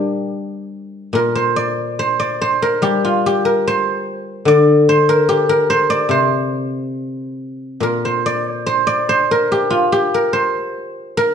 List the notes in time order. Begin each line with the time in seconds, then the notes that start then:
Already playing: A#2 G3 D4 G4 A#4 C5 D5
1.13 A#2 A#4
1.35 C5
1.56 D5
1.99 C5
2.20 D5
2.41 C5
2.62 A#4
2.82 G3 G4
3.05 F4
3.26 G4
3.45 A#4
3.67 C5
4.45 D3 D5
4.89 C5
5.09 A#4
5.29 G4
5.49 A#4
5.70 C5
5.90 D5
6.09 C3 C5
7.80 A#2 A#4
8.05 C5
8.26 D5
8.51 C5
8.66 C5
8.87 D5
9.09 C5
9.31 A#4
9.52 G4
9.70 F4
9.92 G4
10.14 A#4
10.33 C5
11.17 A#4